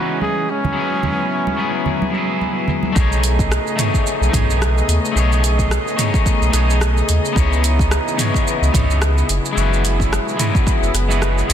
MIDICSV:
0, 0, Header, 1, 6, 480
1, 0, Start_track
1, 0, Tempo, 550459
1, 658, Time_signature, 4, 2, 24, 8
1, 10055, End_track
2, 0, Start_track
2, 0, Title_t, "Flugelhorn"
2, 0, Program_c, 0, 56
2, 0, Note_on_c, 0, 66, 77
2, 171, Note_off_c, 0, 66, 0
2, 192, Note_on_c, 0, 68, 91
2, 435, Note_on_c, 0, 61, 91
2, 448, Note_off_c, 0, 68, 0
2, 2107, Note_off_c, 0, 61, 0
2, 10055, End_track
3, 0, Start_track
3, 0, Title_t, "Clean electric guitar"
3, 0, Program_c, 1, 27
3, 0, Note_on_c, 1, 52, 71
3, 0, Note_on_c, 1, 61, 68
3, 0, Note_on_c, 1, 63, 65
3, 0, Note_on_c, 1, 71, 81
3, 398, Note_off_c, 1, 52, 0
3, 404, Note_off_c, 1, 61, 0
3, 409, Note_off_c, 1, 63, 0
3, 415, Note_off_c, 1, 71, 0
3, 633, Note_on_c, 1, 54, 91
3, 653, Note_on_c, 1, 59, 80
3, 671, Note_on_c, 1, 64, 77
3, 695, Note_on_c, 1, 68, 99
3, 1341, Note_off_c, 1, 54, 0
3, 1351, Note_off_c, 1, 59, 0
3, 1360, Note_off_c, 1, 64, 0
3, 1367, Note_on_c, 1, 54, 78
3, 1372, Note_off_c, 1, 68, 0
3, 1376, Note_on_c, 1, 59, 74
3, 1388, Note_on_c, 1, 64, 77
3, 1398, Note_on_c, 1, 68, 84
3, 1823, Note_off_c, 1, 54, 0
3, 1832, Note_off_c, 1, 59, 0
3, 1833, Note_on_c, 1, 54, 72
3, 1838, Note_off_c, 1, 64, 0
3, 1843, Note_off_c, 1, 68, 0
3, 1854, Note_on_c, 1, 59, 67
3, 1873, Note_on_c, 1, 64, 70
3, 1895, Note_on_c, 1, 68, 80
3, 2541, Note_off_c, 1, 54, 0
3, 2547, Note_off_c, 1, 59, 0
3, 2551, Note_on_c, 1, 57, 101
3, 2561, Note_off_c, 1, 64, 0
3, 2572, Note_off_c, 1, 68, 0
3, 2574, Note_on_c, 1, 63, 92
3, 2592, Note_on_c, 1, 68, 91
3, 2614, Note_on_c, 1, 73, 109
3, 3260, Note_off_c, 1, 57, 0
3, 3271, Note_off_c, 1, 63, 0
3, 3280, Note_off_c, 1, 68, 0
3, 3280, Note_on_c, 1, 57, 91
3, 3289, Note_on_c, 1, 63, 87
3, 3291, Note_off_c, 1, 73, 0
3, 3301, Note_on_c, 1, 68, 78
3, 3311, Note_on_c, 1, 73, 98
3, 3731, Note_off_c, 1, 57, 0
3, 3742, Note_on_c, 1, 57, 83
3, 3749, Note_off_c, 1, 63, 0
3, 3755, Note_off_c, 1, 68, 0
3, 3760, Note_off_c, 1, 73, 0
3, 3763, Note_on_c, 1, 63, 77
3, 3786, Note_on_c, 1, 68, 74
3, 3804, Note_on_c, 1, 73, 90
3, 4455, Note_off_c, 1, 57, 0
3, 4464, Note_on_c, 1, 57, 102
3, 4466, Note_off_c, 1, 63, 0
3, 4477, Note_off_c, 1, 68, 0
3, 4486, Note_off_c, 1, 73, 0
3, 4486, Note_on_c, 1, 63, 95
3, 4504, Note_on_c, 1, 68, 94
3, 4528, Note_on_c, 1, 73, 107
3, 5177, Note_off_c, 1, 57, 0
3, 5187, Note_off_c, 1, 63, 0
3, 5197, Note_off_c, 1, 68, 0
3, 5203, Note_on_c, 1, 57, 94
3, 5208, Note_off_c, 1, 73, 0
3, 5210, Note_on_c, 1, 63, 83
3, 5220, Note_on_c, 1, 68, 86
3, 5233, Note_on_c, 1, 73, 102
3, 5655, Note_off_c, 1, 57, 0
3, 5665, Note_on_c, 1, 57, 85
3, 5669, Note_off_c, 1, 63, 0
3, 5675, Note_off_c, 1, 68, 0
3, 5681, Note_off_c, 1, 73, 0
3, 5686, Note_on_c, 1, 63, 79
3, 5709, Note_on_c, 1, 68, 75
3, 5726, Note_on_c, 1, 73, 95
3, 6377, Note_off_c, 1, 57, 0
3, 6387, Note_off_c, 1, 63, 0
3, 6388, Note_on_c, 1, 59, 102
3, 6399, Note_off_c, 1, 68, 0
3, 6407, Note_off_c, 1, 73, 0
3, 6410, Note_on_c, 1, 63, 100
3, 6430, Note_on_c, 1, 64, 92
3, 6451, Note_on_c, 1, 73, 114
3, 7099, Note_off_c, 1, 59, 0
3, 7109, Note_off_c, 1, 63, 0
3, 7119, Note_off_c, 1, 64, 0
3, 7124, Note_on_c, 1, 59, 91
3, 7130, Note_off_c, 1, 73, 0
3, 7132, Note_on_c, 1, 63, 88
3, 7144, Note_on_c, 1, 64, 82
3, 7153, Note_on_c, 1, 73, 105
3, 7587, Note_off_c, 1, 59, 0
3, 7591, Note_off_c, 1, 63, 0
3, 7597, Note_off_c, 1, 64, 0
3, 7601, Note_off_c, 1, 73, 0
3, 7607, Note_on_c, 1, 59, 88
3, 7617, Note_on_c, 1, 63, 75
3, 7627, Note_on_c, 1, 64, 75
3, 7639, Note_on_c, 1, 73, 96
3, 8080, Note_off_c, 1, 59, 0
3, 8085, Note_off_c, 1, 63, 0
3, 8090, Note_off_c, 1, 64, 0
3, 8097, Note_off_c, 1, 73, 0
3, 8306, Note_on_c, 1, 56, 106
3, 8328, Note_on_c, 1, 64, 98
3, 8351, Note_on_c, 1, 66, 96
3, 8372, Note_on_c, 1, 71, 112
3, 9018, Note_off_c, 1, 56, 0
3, 9029, Note_off_c, 1, 64, 0
3, 9040, Note_off_c, 1, 66, 0
3, 9043, Note_on_c, 1, 56, 92
3, 9050, Note_off_c, 1, 71, 0
3, 9055, Note_on_c, 1, 64, 88
3, 9065, Note_on_c, 1, 66, 86
3, 9074, Note_on_c, 1, 71, 99
3, 9506, Note_off_c, 1, 56, 0
3, 9512, Note_off_c, 1, 64, 0
3, 9517, Note_off_c, 1, 66, 0
3, 9522, Note_off_c, 1, 71, 0
3, 9665, Note_on_c, 1, 56, 86
3, 9674, Note_on_c, 1, 64, 79
3, 9686, Note_on_c, 1, 66, 82
3, 9697, Note_on_c, 1, 71, 100
3, 9989, Note_off_c, 1, 56, 0
3, 9993, Note_off_c, 1, 64, 0
3, 9999, Note_off_c, 1, 66, 0
3, 10005, Note_off_c, 1, 71, 0
3, 10010, Note_on_c, 1, 56, 94
3, 10021, Note_on_c, 1, 64, 89
3, 10055, Note_off_c, 1, 56, 0
3, 10055, Note_off_c, 1, 64, 0
3, 10055, End_track
4, 0, Start_track
4, 0, Title_t, "String section"
4, 0, Program_c, 2, 48
4, 0, Note_on_c, 2, 49, 65
4, 0, Note_on_c, 2, 52, 65
4, 0, Note_on_c, 2, 56, 66
4, 0, Note_on_c, 2, 59, 64
4, 0, Note_on_c, 2, 75, 73
4, 383, Note_off_c, 2, 75, 0
4, 397, Note_off_c, 2, 59, 0
4, 398, Note_off_c, 2, 52, 0
4, 418, Note_on_c, 2, 64, 73
4, 419, Note_on_c, 2, 54, 66
4, 421, Note_on_c, 2, 59, 61
4, 2540, Note_off_c, 2, 56, 0
4, 2543, Note_off_c, 2, 49, 0
4, 2557, Note_off_c, 2, 54, 0
4, 2557, Note_off_c, 2, 64, 0
4, 2558, Note_off_c, 2, 59, 0
4, 2579, Note_on_c, 2, 75, 80
4, 2583, Note_on_c, 2, 57, 72
4, 2584, Note_on_c, 2, 68, 75
4, 2585, Note_on_c, 2, 49, 74
4, 2585, Note_on_c, 2, 59, 73
4, 6386, Note_off_c, 2, 57, 0
4, 6387, Note_off_c, 2, 59, 0
4, 6408, Note_on_c, 2, 59, 72
4, 6413, Note_on_c, 2, 52, 68
4, 8064, Note_off_c, 2, 75, 0
4, 8067, Note_off_c, 2, 68, 0
4, 8076, Note_off_c, 2, 59, 0
4, 8079, Note_off_c, 2, 52, 0
4, 8107, Note_on_c, 2, 59, 75
4, 8108, Note_on_c, 2, 64, 86
4, 8109, Note_on_c, 2, 54, 74
4, 8111, Note_on_c, 2, 68, 71
4, 10055, Note_off_c, 2, 49, 0
4, 10055, Note_off_c, 2, 54, 0
4, 10055, Note_off_c, 2, 59, 0
4, 10055, Note_off_c, 2, 64, 0
4, 10055, Note_off_c, 2, 68, 0
4, 10055, End_track
5, 0, Start_track
5, 0, Title_t, "Sub bass"
5, 0, Program_c, 3, 38
5, 2579, Note_on_c, 3, 35, 97
5, 3125, Note_off_c, 3, 35, 0
5, 3669, Note_on_c, 3, 35, 94
5, 3742, Note_off_c, 3, 35, 0
5, 3779, Note_on_c, 3, 35, 105
5, 4205, Note_off_c, 3, 35, 0
5, 4254, Note_on_c, 3, 39, 96
5, 4349, Note_off_c, 3, 39, 0
5, 4493, Note_on_c, 3, 35, 100
5, 5041, Note_off_c, 3, 35, 0
5, 5592, Note_on_c, 3, 35, 91
5, 5664, Note_off_c, 3, 35, 0
5, 5692, Note_on_c, 3, 35, 97
5, 6122, Note_off_c, 3, 35, 0
5, 6180, Note_on_c, 3, 39, 99
5, 6272, Note_off_c, 3, 39, 0
5, 6416, Note_on_c, 3, 37, 103
5, 6963, Note_off_c, 3, 37, 0
5, 7512, Note_on_c, 3, 37, 86
5, 7584, Note_off_c, 3, 37, 0
5, 7622, Note_on_c, 3, 37, 107
5, 8047, Note_off_c, 3, 37, 0
5, 8100, Note_on_c, 3, 30, 90
5, 8192, Note_off_c, 3, 30, 0
5, 8340, Note_on_c, 3, 30, 101
5, 8885, Note_off_c, 3, 30, 0
5, 9434, Note_on_c, 3, 30, 87
5, 9505, Note_off_c, 3, 30, 0
5, 9535, Note_on_c, 3, 30, 102
5, 9963, Note_off_c, 3, 30, 0
5, 10021, Note_on_c, 3, 35, 91
5, 10055, Note_off_c, 3, 35, 0
5, 10055, End_track
6, 0, Start_track
6, 0, Title_t, "Drums"
6, 80, Note_on_c, 9, 82, 30
6, 167, Note_off_c, 9, 82, 0
6, 181, Note_on_c, 9, 82, 40
6, 186, Note_on_c, 9, 63, 63
6, 268, Note_off_c, 9, 82, 0
6, 274, Note_off_c, 9, 63, 0
6, 321, Note_on_c, 9, 82, 21
6, 408, Note_off_c, 9, 82, 0
6, 423, Note_on_c, 9, 82, 69
6, 510, Note_off_c, 9, 82, 0
6, 559, Note_on_c, 9, 82, 30
6, 562, Note_on_c, 9, 64, 71
6, 563, Note_on_c, 9, 63, 78
6, 570, Note_on_c, 9, 62, 44
6, 646, Note_off_c, 9, 82, 0
6, 649, Note_off_c, 9, 64, 0
6, 650, Note_off_c, 9, 63, 0
6, 657, Note_off_c, 9, 62, 0
6, 667, Note_on_c, 9, 82, 40
6, 754, Note_off_c, 9, 82, 0
6, 804, Note_on_c, 9, 82, 20
6, 891, Note_off_c, 9, 82, 0
6, 897, Note_on_c, 9, 63, 83
6, 900, Note_on_c, 9, 62, 48
6, 902, Note_on_c, 9, 64, 71
6, 907, Note_on_c, 9, 82, 74
6, 984, Note_off_c, 9, 63, 0
6, 987, Note_off_c, 9, 62, 0
6, 989, Note_off_c, 9, 64, 0
6, 994, Note_off_c, 9, 82, 0
6, 1044, Note_on_c, 9, 82, 32
6, 1131, Note_off_c, 9, 82, 0
6, 1144, Note_on_c, 9, 82, 41
6, 1232, Note_off_c, 9, 82, 0
6, 1281, Note_on_c, 9, 62, 55
6, 1281, Note_on_c, 9, 63, 59
6, 1286, Note_on_c, 9, 82, 20
6, 1368, Note_off_c, 9, 62, 0
6, 1369, Note_off_c, 9, 63, 0
6, 1373, Note_off_c, 9, 82, 0
6, 1384, Note_on_c, 9, 82, 69
6, 1472, Note_off_c, 9, 82, 0
6, 1522, Note_on_c, 9, 82, 31
6, 1609, Note_off_c, 9, 82, 0
6, 1620, Note_on_c, 9, 64, 64
6, 1627, Note_on_c, 9, 82, 42
6, 1707, Note_off_c, 9, 64, 0
6, 1714, Note_off_c, 9, 82, 0
6, 1761, Note_on_c, 9, 63, 90
6, 1765, Note_on_c, 9, 82, 20
6, 1848, Note_off_c, 9, 63, 0
6, 1852, Note_off_c, 9, 82, 0
6, 1868, Note_on_c, 9, 82, 71
6, 1955, Note_off_c, 9, 82, 0
6, 2003, Note_on_c, 9, 82, 30
6, 2090, Note_off_c, 9, 82, 0
6, 2105, Note_on_c, 9, 63, 57
6, 2108, Note_on_c, 9, 82, 39
6, 2192, Note_off_c, 9, 63, 0
6, 2196, Note_off_c, 9, 82, 0
6, 2246, Note_on_c, 9, 82, 21
6, 2333, Note_off_c, 9, 82, 0
6, 2334, Note_on_c, 9, 64, 73
6, 2346, Note_on_c, 9, 82, 72
6, 2421, Note_off_c, 9, 64, 0
6, 2433, Note_off_c, 9, 82, 0
6, 2466, Note_on_c, 9, 63, 82
6, 2480, Note_on_c, 9, 82, 28
6, 2553, Note_off_c, 9, 63, 0
6, 2568, Note_off_c, 9, 82, 0
6, 2582, Note_on_c, 9, 36, 109
6, 2584, Note_on_c, 9, 82, 42
6, 2669, Note_off_c, 9, 36, 0
6, 2671, Note_off_c, 9, 82, 0
6, 2723, Note_on_c, 9, 82, 21
6, 2810, Note_off_c, 9, 82, 0
6, 2821, Note_on_c, 9, 42, 98
6, 2826, Note_on_c, 9, 82, 78
6, 2909, Note_off_c, 9, 42, 0
6, 2913, Note_off_c, 9, 82, 0
6, 2957, Note_on_c, 9, 36, 100
6, 2963, Note_on_c, 9, 82, 34
6, 3044, Note_off_c, 9, 36, 0
6, 3051, Note_off_c, 9, 82, 0
6, 3066, Note_on_c, 9, 37, 103
6, 3070, Note_on_c, 9, 82, 43
6, 3153, Note_off_c, 9, 37, 0
6, 3157, Note_off_c, 9, 82, 0
6, 3202, Note_on_c, 9, 82, 22
6, 3289, Note_off_c, 9, 82, 0
6, 3303, Note_on_c, 9, 42, 90
6, 3303, Note_on_c, 9, 45, 64
6, 3308, Note_on_c, 9, 82, 79
6, 3391, Note_off_c, 9, 42, 0
6, 3391, Note_off_c, 9, 45, 0
6, 3395, Note_off_c, 9, 82, 0
6, 3437, Note_on_c, 9, 36, 61
6, 3442, Note_on_c, 9, 82, 34
6, 3524, Note_off_c, 9, 36, 0
6, 3529, Note_off_c, 9, 82, 0
6, 3547, Note_on_c, 9, 82, 46
6, 3634, Note_off_c, 9, 82, 0
6, 3688, Note_on_c, 9, 82, 23
6, 3775, Note_off_c, 9, 82, 0
6, 3779, Note_on_c, 9, 36, 104
6, 3785, Note_on_c, 9, 42, 96
6, 3785, Note_on_c, 9, 45, 81
6, 3789, Note_on_c, 9, 82, 79
6, 3866, Note_off_c, 9, 36, 0
6, 3872, Note_off_c, 9, 42, 0
6, 3872, Note_off_c, 9, 45, 0
6, 3876, Note_off_c, 9, 82, 0
6, 3927, Note_on_c, 9, 82, 33
6, 4014, Note_off_c, 9, 82, 0
6, 4027, Note_on_c, 9, 37, 104
6, 4032, Note_on_c, 9, 82, 43
6, 4115, Note_off_c, 9, 37, 0
6, 4119, Note_off_c, 9, 82, 0
6, 4167, Note_on_c, 9, 82, 22
6, 4254, Note_off_c, 9, 82, 0
6, 4264, Note_on_c, 9, 42, 87
6, 4268, Note_on_c, 9, 82, 73
6, 4351, Note_off_c, 9, 42, 0
6, 4355, Note_off_c, 9, 82, 0
6, 4405, Note_on_c, 9, 82, 32
6, 4492, Note_off_c, 9, 82, 0
6, 4508, Note_on_c, 9, 82, 45
6, 4595, Note_off_c, 9, 82, 0
6, 4641, Note_on_c, 9, 82, 23
6, 4729, Note_off_c, 9, 82, 0
6, 4743, Note_on_c, 9, 42, 94
6, 4747, Note_on_c, 9, 82, 84
6, 4830, Note_off_c, 9, 42, 0
6, 4834, Note_off_c, 9, 82, 0
6, 4874, Note_on_c, 9, 36, 60
6, 4877, Note_on_c, 9, 82, 34
6, 4962, Note_off_c, 9, 36, 0
6, 4964, Note_off_c, 9, 82, 0
6, 4981, Note_on_c, 9, 37, 102
6, 4986, Note_on_c, 9, 82, 47
6, 5069, Note_off_c, 9, 37, 0
6, 5073, Note_off_c, 9, 82, 0
6, 5124, Note_on_c, 9, 82, 22
6, 5211, Note_off_c, 9, 82, 0
6, 5222, Note_on_c, 9, 42, 93
6, 5222, Note_on_c, 9, 45, 60
6, 5226, Note_on_c, 9, 82, 83
6, 5309, Note_off_c, 9, 42, 0
6, 5309, Note_off_c, 9, 45, 0
6, 5313, Note_off_c, 9, 82, 0
6, 5354, Note_on_c, 9, 36, 109
6, 5360, Note_on_c, 9, 82, 36
6, 5441, Note_off_c, 9, 36, 0
6, 5447, Note_off_c, 9, 82, 0
6, 5457, Note_on_c, 9, 36, 99
6, 5462, Note_on_c, 9, 82, 47
6, 5545, Note_off_c, 9, 36, 0
6, 5549, Note_off_c, 9, 82, 0
6, 5601, Note_on_c, 9, 82, 23
6, 5689, Note_off_c, 9, 82, 0
6, 5699, Note_on_c, 9, 37, 32
6, 5699, Note_on_c, 9, 42, 90
6, 5703, Note_on_c, 9, 82, 80
6, 5786, Note_off_c, 9, 37, 0
6, 5786, Note_off_c, 9, 42, 0
6, 5790, Note_off_c, 9, 82, 0
6, 5845, Note_on_c, 9, 82, 35
6, 5932, Note_off_c, 9, 82, 0
6, 5941, Note_on_c, 9, 37, 105
6, 5945, Note_on_c, 9, 82, 48
6, 6028, Note_off_c, 9, 37, 0
6, 6033, Note_off_c, 9, 82, 0
6, 6081, Note_on_c, 9, 82, 23
6, 6168, Note_off_c, 9, 82, 0
6, 6180, Note_on_c, 9, 42, 84
6, 6184, Note_on_c, 9, 82, 76
6, 6267, Note_off_c, 9, 42, 0
6, 6271, Note_off_c, 9, 82, 0
6, 6323, Note_on_c, 9, 82, 34
6, 6411, Note_off_c, 9, 82, 0
6, 6419, Note_on_c, 9, 36, 125
6, 6429, Note_on_c, 9, 82, 47
6, 6506, Note_off_c, 9, 36, 0
6, 6517, Note_off_c, 9, 82, 0
6, 6565, Note_on_c, 9, 82, 22
6, 6652, Note_off_c, 9, 82, 0
6, 6662, Note_on_c, 9, 42, 92
6, 6666, Note_on_c, 9, 82, 85
6, 6749, Note_off_c, 9, 42, 0
6, 6754, Note_off_c, 9, 82, 0
6, 6796, Note_on_c, 9, 36, 111
6, 6807, Note_on_c, 9, 82, 37
6, 6883, Note_off_c, 9, 36, 0
6, 6894, Note_off_c, 9, 82, 0
6, 6900, Note_on_c, 9, 37, 100
6, 6904, Note_on_c, 9, 82, 45
6, 6988, Note_off_c, 9, 37, 0
6, 6992, Note_off_c, 9, 82, 0
6, 7046, Note_on_c, 9, 82, 22
6, 7134, Note_off_c, 9, 82, 0
6, 7142, Note_on_c, 9, 42, 87
6, 7142, Note_on_c, 9, 45, 55
6, 7146, Note_on_c, 9, 82, 84
6, 7229, Note_off_c, 9, 42, 0
6, 7229, Note_off_c, 9, 45, 0
6, 7234, Note_off_c, 9, 82, 0
6, 7276, Note_on_c, 9, 36, 66
6, 7289, Note_on_c, 9, 82, 35
6, 7363, Note_off_c, 9, 36, 0
6, 7377, Note_off_c, 9, 82, 0
6, 7391, Note_on_c, 9, 82, 46
6, 7478, Note_off_c, 9, 82, 0
6, 7528, Note_on_c, 9, 82, 23
6, 7615, Note_off_c, 9, 82, 0
6, 7622, Note_on_c, 9, 36, 103
6, 7626, Note_on_c, 9, 42, 89
6, 7626, Note_on_c, 9, 45, 82
6, 7631, Note_on_c, 9, 82, 87
6, 7709, Note_off_c, 9, 36, 0
6, 7714, Note_off_c, 9, 42, 0
6, 7714, Note_off_c, 9, 45, 0
6, 7718, Note_off_c, 9, 82, 0
6, 7766, Note_on_c, 9, 82, 35
6, 7853, Note_off_c, 9, 82, 0
6, 7862, Note_on_c, 9, 37, 105
6, 7866, Note_on_c, 9, 82, 46
6, 7949, Note_off_c, 9, 37, 0
6, 7953, Note_off_c, 9, 82, 0
6, 8004, Note_on_c, 9, 82, 23
6, 8091, Note_off_c, 9, 82, 0
6, 8103, Note_on_c, 9, 42, 82
6, 8108, Note_on_c, 9, 82, 78
6, 8191, Note_off_c, 9, 42, 0
6, 8195, Note_off_c, 9, 82, 0
6, 8245, Note_on_c, 9, 82, 35
6, 8332, Note_off_c, 9, 82, 0
6, 8350, Note_on_c, 9, 82, 44
6, 8437, Note_off_c, 9, 82, 0
6, 8490, Note_on_c, 9, 82, 21
6, 8577, Note_off_c, 9, 82, 0
6, 8587, Note_on_c, 9, 42, 88
6, 8591, Note_on_c, 9, 82, 80
6, 8674, Note_off_c, 9, 42, 0
6, 8678, Note_off_c, 9, 82, 0
6, 8719, Note_on_c, 9, 36, 64
6, 8732, Note_on_c, 9, 82, 35
6, 8806, Note_off_c, 9, 36, 0
6, 8819, Note_off_c, 9, 82, 0
6, 8830, Note_on_c, 9, 37, 101
6, 8835, Note_on_c, 9, 82, 46
6, 8918, Note_off_c, 9, 37, 0
6, 8922, Note_off_c, 9, 82, 0
6, 8968, Note_on_c, 9, 82, 22
6, 9055, Note_off_c, 9, 82, 0
6, 9064, Note_on_c, 9, 42, 83
6, 9064, Note_on_c, 9, 45, 60
6, 9069, Note_on_c, 9, 82, 82
6, 9152, Note_off_c, 9, 42, 0
6, 9152, Note_off_c, 9, 45, 0
6, 9156, Note_off_c, 9, 82, 0
6, 9199, Note_on_c, 9, 36, 110
6, 9206, Note_on_c, 9, 82, 35
6, 9286, Note_off_c, 9, 36, 0
6, 9293, Note_off_c, 9, 82, 0
6, 9302, Note_on_c, 9, 36, 107
6, 9308, Note_on_c, 9, 82, 47
6, 9390, Note_off_c, 9, 36, 0
6, 9395, Note_off_c, 9, 82, 0
6, 9448, Note_on_c, 9, 82, 22
6, 9535, Note_off_c, 9, 82, 0
6, 9545, Note_on_c, 9, 37, 31
6, 9545, Note_on_c, 9, 42, 88
6, 9549, Note_on_c, 9, 82, 80
6, 9632, Note_off_c, 9, 37, 0
6, 9632, Note_off_c, 9, 42, 0
6, 9636, Note_off_c, 9, 82, 0
6, 9687, Note_on_c, 9, 82, 35
6, 9774, Note_off_c, 9, 82, 0
6, 9783, Note_on_c, 9, 37, 93
6, 9787, Note_on_c, 9, 82, 45
6, 9870, Note_off_c, 9, 37, 0
6, 9875, Note_off_c, 9, 82, 0
6, 9926, Note_on_c, 9, 82, 24
6, 10013, Note_off_c, 9, 82, 0
6, 10027, Note_on_c, 9, 42, 81
6, 10055, Note_off_c, 9, 42, 0
6, 10055, End_track
0, 0, End_of_file